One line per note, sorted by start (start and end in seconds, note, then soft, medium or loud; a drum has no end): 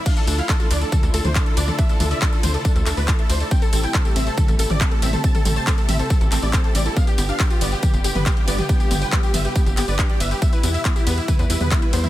0.00 6.93 E4 medium
0.06 3.48 D3 medium
0.06 3.48 F3 medium
0.06 3.48 A3 medium
0.06 0.12 D4 medium
0.06 3.48 F4 medium
0.06 0.15 F5 loud
0.06 kick loud
0.06 closed hi-hat medium
0.06 crash medium
0.06 tambourine soft
0.16 0.25 A4 medium
0.16 0.23 A4 loud
0.16 closed hi-hat soft
0.16 tambourine soft
0.27 0.41 D2 loud
0.27 0.37 D4 medium
0.27 0.36 A4 medium
0.27 open hi-hat loud
0.27 ride medium
0.27 tambourine medium
0.38 0.42 E4 loud
0.38 0.47 F5 medium
0.38 closed hi-hat soft
0.38 tambourine soft
0.49 0.53 D4 medium
0.49 0.58 A4 medium
0.49 kick loud
0.49 clap loud
0.49 closed hi-hat loud
0.49 tambourine soft
0.60 0.66 F4 loud
0.60 0.69 A4 medium
0.60 closed hi-hat soft
0.60 tambourine soft
0.71 0.84 D2 medium
0.71 0.80 D4 loud
0.71 0.79 D5 loud
0.71 open hi-hat loud
0.71 ride medium
0.71 tambourine medium
0.81 0.90 A4 medium
0.81 0.91 D5 medium
0.81 closed hi-hat soft
0.81 tambourine soft
0.92 1.01 A4 loud
0.92 1.01 A4 medium
0.92 kick loud
0.92 closed hi-hat loud
0.92 mid tom medium
0.92 tambourine soft
1.03 1.10 D2 loud
1.03 1.09 A4 loud
1.03 closed hi-hat soft
1.03 tambourine soft
1.14 1.21 D2 loud
1.14 1.23 A4 loud
1.14 1.23 A4 medium
1.14 open hi-hat loud
1.14 ride medium
1.14 tambourine medium
1.25 1.38 D2 medium
1.25 1.34 D4 medium
1.25 1.33 C5 loud
1.25 closed hi-hat soft
1.25 mid tom medium
1.25 tambourine soft
1.35 1.39 D4 medium
1.35 1.44 A4 medium
1.35 kick loud
1.35 clap loud
1.35 closed hi-hat medium
1.35 tambourine soft
1.46 1.55 A4 medium
1.46 closed hi-hat soft
1.57 1.70 D2 loud
1.57 1.66 D4 loud
1.57 1.66 D5 medium
1.57 open hi-hat loud
1.57 ride medium
1.57 tambourine medium
1.68 1.76 A4 medium
1.68 1.77 D5 medium
1.68 closed hi-hat soft
1.68 mid tom medium
1.68 tambourine soft
1.78 1.85 D4 medium
1.78 1.87 E5 loud
1.78 kick loud
1.78 closed hi-hat medium
1.78 tambourine soft
1.89 1.98 A4 medium
1.89 1.95 A4 loud
1.89 closed hi-hat soft
1.89 tambourine soft
2.00 2.14 D2 loud
2.00 2.06 D4 medium
2.00 2.09 A4 medium
2.00 open hi-hat loud
2.00 mid tom medium
2.00 ride medium
2.00 tambourine medium
2.11 2.17 D5 loud
2.11 2.20 E5 medium
2.11 closed hi-hat soft
2.11 tambourine soft
2.22 2.25 D4 medium
2.22 2.30 A4 medium
2.22 kick loud
2.22 clap loud
2.22 closed hi-hat medium
2.22 tambourine soft
2.32 2.41 A4 medium
2.32 2.42 A4 medium
2.32 closed hi-hat soft
2.32 tambourine soft
2.43 2.57 D2 medium
2.43 2.53 D4 medium
2.43 2.52 C5 loud
2.43 open hi-hat loud
2.43 mid tom medium
2.43 ride medium
2.43 tambourine medium
2.54 2.63 A4 medium
2.54 2.63 D5 medium
2.54 closed hi-hat soft
2.54 tambourine soft
2.65 2.71 D4 medium
2.65 2.73 A4 medium
2.65 kick loud
2.65 closed hi-hat loud
2.65 tambourine soft
2.76 2.82 D2 loud
2.76 2.82 A4 loud
2.76 closed hi-hat soft
2.76 tambourine soft
2.86 2.93 D2 loud
2.86 2.93 D4 medium
2.86 2.95 A4 medium
2.86 clap medium
2.86 open hi-hat loud
2.86 ride medium
2.86 tambourine medium
2.97 3.11 D2 medium
2.97 3.06 B4 loud
2.97 3.03 D5 loud
2.97 open hi-hat medium
2.97 tambourine soft
3.08 3.14 E4 medium
3.08 3.17 A4 medium
3.08 kick loud
3.08 clap loud
3.08 closed hi-hat medium
3.08 tambourine soft
3.19 3.27 A4 medium
3.19 3.25 E5 medium
3.19 closed hi-hat soft
3.29 3.43 D2 loud
3.29 3.38 C5 medium
3.29 3.36 D5 medium
3.29 open hi-hat loud
3.29 ride medium
3.29 tambourine medium
3.40 3.49 A4 medium
3.40 3.50 D5 medium
3.40 closed hi-hat soft
3.40 tambourine soft
3.51 6.93 C3 medium
3.51 6.93 G3 medium
3.51 6.93 A3 medium
3.51 3.57 C4 medium
3.51 12.09 G4 medium
3.51 3.60 G5 loud
3.51 kick loud
3.51 closed hi-hat medium
3.51 tambourine soft
3.62 3.71 A4 medium
3.62 3.68 A4 loud
3.62 closed hi-hat soft
3.62 tambourine soft
3.73 3.86 A1 medium
3.73 3.82 C4 medium
3.73 3.81 A4 medium
3.73 open hi-hat loud
3.73 ride medium
3.73 tambourine medium
3.83 3.87 E4 medium
3.83 3.92 G5 medium
3.83 closed hi-hat soft
3.83 tambourine soft
3.94 4.03 A4 medium
3.94 kick loud
3.94 clap loud
3.94 closed hi-hat medium
3.94 tambourine soft
4.05 4.11 G4 loud
4.05 4.14 A4 medium
4.05 closed hi-hat soft
4.05 tambourine soft
4.16 4.29 A1 medium
4.16 4.25 C4 loud
4.16 4.25 E5 loud
4.16 open hi-hat loud
4.16 ride medium
4.16 tambourine medium
4.27 4.36 A4 medium
4.27 4.36 C5 medium
4.27 closed hi-hat soft
4.27 tambourine soft
4.37 4.46 A4 medium
4.37 4.47 A4 loud
4.37 kick loud
4.37 closed hi-hat loud
4.37 mid tom medium
4.37 tambourine soft
4.48 4.55 A1 loud
4.48 4.54 A4 loud
4.48 closed hi-hat soft
4.48 tambourine soft
4.59 4.66 A1 loud
4.59 4.68 A4 medium
4.59 4.68 A4 loud
4.59 open hi-hat loud
4.59 ride medium
4.59 tambourine medium
4.70 4.83 A1 medium
4.70 4.79 C4 medium
4.70 4.79 D5 loud
4.70 closed hi-hat soft
4.70 mid tom medium
4.70 tambourine soft
4.81 4.84 C4 medium
4.81 4.89 A4 medium
4.81 kick loud
4.81 clap loud
4.81 closed hi-hat medium
4.81 tambourine soft
4.91 5.01 A4 medium
4.91 5.00 A4 medium
4.91 closed hi-hat soft
5.02 5.16 A1 loud
5.02 5.11 C4 loud
5.02 5.11 E5 medium
5.02 open hi-hat loud
5.02 ride medium
5.02 tambourine medium
5.13 5.22 A4 medium
5.13 5.22 C5 medium
5.13 closed hi-hat soft
5.13 mid tom medium
5.13 tambourine soft
5.24 5.30 C4 medium
5.24 5.33 A5 loud
5.24 kick loud
5.24 closed hi-hat medium
5.24 tambourine soft
5.35 5.41 A4 loud
5.35 5.43 A4 medium
5.35 closed hi-hat soft
5.35 mid tom medium
5.35 tambourine soft
5.45 5.59 A1 loud
5.45 5.52 C4 medium
5.45 5.54 A4 medium
5.45 open hi-hat loud
5.45 mid tom medium
5.45 ride medium
5.45 tambourine medium
5.56 5.62 C5 loud
5.56 5.65 A5 loud
5.56 closed hi-hat soft
5.56 tambourine soft
5.67 5.71 C4 medium
5.67 5.76 A4 medium
5.67 kick loud
5.67 clap loud
5.67 closed hi-hat medium
5.67 tambourine soft
5.78 5.87 A4 medium
5.78 closed hi-hat soft
5.78 tambourine soft
5.89 6.02 A1 medium
5.89 5.98 C4 medium
5.89 5.97 E5 medium
5.89 open hi-hat loud
5.89 mid tom medium
5.89 ride medium
5.89 tambourine medium
5.99 6.08 A4 medium
5.99 6.09 C5 medium
5.99 closed hi-hat soft
5.99 tambourine soft
6.10 6.16 C4 medium
6.10 6.19 A4 medium
6.10 kick loud
6.10 closed hi-hat medium
6.10 tambourine soft
6.21 6.28 A1 loud
6.21 6.27 A4 loud
6.21 closed hi-hat soft
6.21 tambourine soft
6.32 6.39 A1 medium
6.32 6.41 C4 loud
6.32 6.41 A4 medium
6.32 clap medium
6.32 open hi-hat loud
6.32 ride medium
6.32 tambourine medium
6.43 6.56 A1 medium
6.43 6.52 E4 medium
6.43 6.51 D5 loud
6.43 open hi-hat medium
6.43 tambourine soft
6.53 6.63 C4 loud
6.53 6.62 A4 medium
6.53 kick loud
6.53 clap loud
6.53 closed hi-hat medium
6.53 tambourine soft
6.64 6.73 A4 medium
6.64 6.70 C5 medium
6.64 closed hi-hat soft
6.75 6.88 A1 loud
6.75 6.81 C4 medium
6.75 6.84 D5 medium
6.75 open hi-hat loud
6.75 ride medium
6.75 tambourine medium
6.86 6.92 E4 medium
6.86 6.94 A4 medium
6.86 closed hi-hat soft
6.86 tambourine soft
6.96 10.38 D3 medium
6.96 10.38 G3 medium
6.96 10.38 B3 medium
6.96 7.03 B3 medium
6.96 10.38 F4 medium
6.96 7.05 F5 loud
6.96 kick loud
6.96 closed hi-hat medium
6.96 tambourine soft
7.07 7.16 G4 medium
7.07 7.13 G4 loud
7.07 closed hi-hat soft
7.07 tambourine soft
7.18 7.32 G1 loud
7.18 7.27 B3 medium
7.18 7.27 G4 medium
7.18 open hi-hat loud
7.18 ride medium
7.18 tambourine medium
7.29 7.33 D4 loud
7.29 7.38 F5 medium
7.29 closed hi-hat soft
7.29 tambourine soft
7.40 7.43 B3 medium
7.40 7.48 G4 medium
7.40 kick loud
7.40 clap loud
7.40 closed hi-hat medium
7.40 tambourine soft
7.50 7.57 F4 loud
7.50 7.59 G4 medium
7.50 closed hi-hat soft
7.50 tambourine soft
7.61 7.75 G1 medium
7.61 7.70 B3 loud
7.61 7.70 D5 medium
7.61 open hi-hat loud
7.61 ride medium
7.61 tambourine medium
7.72 7.81 G4 medium
7.72 7.81 B4 medium
7.72 closed hi-hat soft
7.72 tambourine soft
7.83 7.92 G4 medium
7.83 7.92 G4 loud
7.83 kick loud
7.83 closed hi-hat medium
7.83 mid tom medium
7.83 tambourine soft
7.94 8.00 G1 loud
7.94 8.00 G4 loud
7.94 closed hi-hat soft
7.94 tambourine soft
8.04 8.11 G1 loud
8.04 8.13 G4 medium
8.04 8.14 G4 loud
8.04 open hi-hat loud
8.04 ride medium
8.04 tambourine medium
8.15 8.29 G1 medium
8.15 8.24 B3 medium
8.15 8.24 B4 medium
8.15 closed hi-hat soft
8.15 mid tom medium
8.15 tambourine soft
8.26 8.30 B3 medium
8.26 8.35 G4 medium
8.26 kick loud
8.26 clap loud
8.26 closed hi-hat medium
8.26 tambourine soft
8.37 8.46 G4 medium
8.37 closed hi-hat soft
8.48 8.61 G1 loud
8.48 8.57 B3 loud
8.48 8.56 D5 medium
8.48 open hi-hat loud
8.48 ride medium
8.48 tambourine medium
8.58 8.67 G4 medium
8.58 8.68 B4 medium
8.58 closed hi-hat soft
8.58 mid tom medium
8.58 tambourine soft
8.69 8.75 B3 medium
8.69 8.78 G5 loud
8.69 kick loud
8.69 closed hi-hat medium
8.69 tambourine soft
8.80 8.86 G4 loud
8.80 8.89 G4 medium
8.80 closed hi-hat soft
8.80 tambourine soft
8.91 9.04 G1 loud
8.91 8.97 B3 medium
8.91 8.99 G4 medium
8.91 open hi-hat loud
8.91 mid tom medium
8.91 ride medium
8.91 tambourine medium
9.01 9.08 B4 loud
9.01 9.10 G5 medium
9.01 closed hi-hat soft
9.01 tambourine soft
9.12 9.16 B3 medium
9.12 9.21 G4 medium
9.12 kick loud
9.12 clap loud
9.12 closed hi-hat medium
9.12 tambourine soft
9.23 9.32 G4 medium
9.23 closed hi-hat soft
9.23 tambourine soft
9.34 9.47 G1 medium
9.34 9.43 B3 medium
9.34 9.43 E5 loud
9.34 open hi-hat loud
9.34 mid tom medium
9.34 ride medium
9.34 tambourine medium
9.45 9.53 G4 medium
9.45 9.54 B4 medium
9.45 closed hi-hat soft
9.45 tambourine soft
9.56 9.62 B3 medium
9.56 9.64 G4 medium
9.56 kick loud
9.56 closed hi-hat medium
9.56 tambourine soft
9.66 9.73 G1 loud
9.66 9.72 G4 loud
9.66 closed hi-hat soft
9.66 tambourine soft
9.77 9.84 G1 loud
9.77 9.83 B3 medium
9.77 9.86 G4 medium
9.77 clap medium
9.77 open hi-hat loud
9.77 ride medium
9.77 tambourine medium
9.88 10.01 G1 medium
9.88 9.94 B4 loud
9.88 9.97 D5 medium
9.88 open hi-hat medium
9.88 tambourine soft
9.99 10.05 D4 medium
9.99 10.07 G4 medium
9.99 kick loud
9.99 clap loud
9.99 closed hi-hat medium
9.99 tambourine soft
10.10 10.18 G4 medium
10.10 10.16 D5 medium
10.10 closed hi-hat soft
10.20 10.34 G1 loud
10.20 10.26 B4 medium
10.20 10.29 E5 medium
10.20 open hi-hat loud
10.20 ride medium
10.20 tambourine medium
10.31 10.40 G4 medium
10.31 10.40 B4 medium
10.31 closed hi-hat soft
10.31 tambourine soft
10.42 12.09 B2 medium
10.42 12.09 E3 medium
10.42 12.09 G3 medium
10.42 10.48 B3 medium
10.42 12.09 E4 medium
10.42 10.51 E5 loud
10.42 kick loud
10.42 closed hi-hat medium
10.42 tambourine soft
10.53 10.61 E4 medium
10.53 10.59 B4 loud
10.53 closed hi-hat soft
10.53 tambourine soft
10.63 10.77 E2 loud
10.63 10.73 B3 medium
10.63 10.72 E4 medium
10.63 open hi-hat loud
10.63 ride medium
10.63 tambourine medium
10.74 10.78 E4 loud
10.74 10.83 E5 loud
10.74 closed hi-hat soft
10.74 tambourine soft
10.85 10.89 B3 medium
10.85 10.94 E4 medium
10.85 kick loud
10.85 clap loud
10.85 closed hi-hat loud
10.85 tambourine soft
10.96 11.05 E4 medium
10.96 11.02 G4 loud
10.96 closed hi-hat soft
10.96 tambourine soft
11.07 11.20 E2 medium
11.07 11.16 B3 loud
11.07 11.15 B4 medium
11.07 open hi-hat loud
11.07 ride medium
11.07 tambourine medium
11.17 11.26 E4 medium
11.17 11.27 E5 medium
11.17 closed hi-hat soft
11.17 tambourine soft
11.28 11.37 E4 medium
11.28 11.37 B4 loud
11.28 kick loud
11.28 closed hi-hat loud
11.28 mid tom medium
11.28 tambourine soft
11.39 11.46 E2 loud
11.39 11.45 B4 loud
11.39 closed hi-hat soft
11.39 tambourine soft
11.50 11.57 E2 loud
11.50 11.59 E4 medium
11.50 11.59 B4 loud
11.50 open hi-hat loud
11.50 ride medium
11.50 tambourine medium
11.61 11.74 E2 medium
11.61 11.70 B3 medium
11.61 11.69 B4 medium
11.61 closed hi-hat soft
11.61 mid tom medium
11.61 tambourine soft
11.71 11.75 B3 medium
11.71 11.80 E4 medium
11.71 kick loud
11.71 clap loud
11.71 closed hi-hat medium
11.71 tambourine soft
11.82 11.91 E4 medium
11.82 11.91 B4 medium
11.82 closed hi-hat soft
11.93 12.06 E2 loud
11.93 12.02 B3 loud
11.93 12.02 C5 medium
11.93 open hi-hat loud
11.93 ride medium
11.93 tambourine medium
12.04 12.09 E4 medium
12.04 12.09 E5 medium
12.04 closed hi-hat soft
12.04 mid tom medium
12.04 tambourine soft